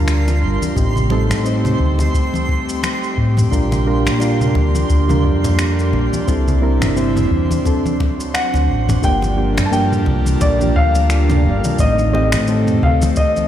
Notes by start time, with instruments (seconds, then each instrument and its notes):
Already playing: fingered electric bass D2, synth keys G3 D4 F4 A#4, analog synth pad G3 D4 F4 A#4 A5, synth texture C6
0.08 finger snap, shaker
0.28 muted conga, shaker
0.41 fingered electric bass G1
0.62 high conga, shaker
0.75 fingered electric bass A1, synth keys G3 C4 D#4 G4, analog synth pad A3 C4 G4, kick, muted conga, shaker
0.96 low conga, shaker
1.10 synth keys G3 C4 D#4 A4, muted conga
1.30 fingered electric bass A2, finger snap, high conga, shaker
1.44 synth keys G3 C4 D#4 C5, shaker
1.65 muted conga, low conga, shaker
1.80 fingered electric bass D2, kick
1.99 muted conga, high conga, shaker
2.14 kick, shaker
2.34 high conga, shaker
2.49 kick, muted conga
2.69 shaker
2.83 finger snap, muted conga, shaker
3.04 shaker
3.18 fingered electric bass A2, kick
3.37 mid tom, muted conga, high conga, shaker
3.50 fingered electric bass A#1, synth keys G3 D4 F4 A#4, analog synth pad A#3 D4, kick, shaker
3.71 muted conga, low conga, shaker
3.86 synth keys G3 D4 F4 A#4
4.06 fingered electric bass A#2, finger snap, high conga, shaker
4.19 synth keys G3 D4 F4 A#4, muted conga, shaker
4.41 low conga, shaker
4.55 fingered electric bass D2, kick, muted conga
4.75 high conga, shaker
4.90 fingered electric bass D2, kick, shaker
5.07 synth keys G3 D4 F4 A#4, muted conga, high conga, low conga, shaker
5.24 fingered electric bass F2, kick
5.44 mid tom, muted conga, shaker
5.59 finger snap, shaker
5.79 shaker
5.92 fingered electric bass A#1, muted conga
6.13 high conga, shaker
6.27 fingered electric bass C2, analog synth pad C3 G3 E4, synth keys G3 C4 E4 A4, kick, muted conga, shaker
6.48 low conga, shaker
6.61 synth keys G3 C4 E4 A#4
6.82 fingered electric bass G1, finger snap, mid tom, muted conga, high conga, shaker
6.96 synth keys G3 C4 E4 C5, shaker
7.16 mid tom, muted conga, low conga, shaker
7.31 fingered electric bass E2, kick
7.51 high conga, shaker
7.65 synth keys F#3 C4 D4 A4, analog synth pad F#3 C4, kick, muted conga, shaker
7.86 high conga, shaker
8.00 kick, muted conga
8.20 shaker
8.34 grand piano F#5, finger snap, shaker
8.54 fingered electric bass D2, muted conga, shaker
8.68 fingered electric bass A1
8.89 mid tom, muted conga, high conga, shaker
9.02 fingered electric bass G1, synth keys F3 A#3 D4 G4, analog synth pad G3 D4 F4 A4 A#4, grand piano G5, kick, shaker
9.22 muted conga, shaker
9.36 synth keys F3 A#3 D4 G4
9.57 fingered electric bass G2, finger snap, mid tom, muted conga, high conga, shaker
9.66 grand piano A5
9.70 synth keys F3 A#3 D4 G4, grand piano G5, shaker
9.92 mid tom, shaker
10.06 fingered electric bass C2, kick, muted conga, low conga
10.26 high conga, shaker
10.41 fingered electric bass A#1, grand piano D5, kick, muted conga, shaker
10.59 synth keys F3 A#3 D4 G4, high conga, shaker
10.76 fingered electric bass D2, grand piano F5, kick
10.95 muted conga, shaker
11.10 finger snap, shaker
11.30 mid tom, muted conga, low conga, shaker
11.45 fingered electric bass G1
11.64 high conga, low conga, shaker
11.78 fingered electric bass A1, synth keys D#3 A3 C4 D#4, analog synth pad A3 C4 G4, grand piano D#5, kick, muted conga, shaker
11.99 shaker
12.12 synth keys D#3 A3 C4 G4, grand piano D#5, muted conga
12.32 fingered electric bass A2, finger snap, high conga, shaker
12.47 synth keys D#3 A3 C4 A4, shaker
12.67 mid tom, muted conga, shaker
12.82 fingered electric bass D2, grand piano F5, kick, low conga
13.02 muted conga, high conga, shaker
13.16 grand piano D#5, kick, shaker
13.36 high conga, shaker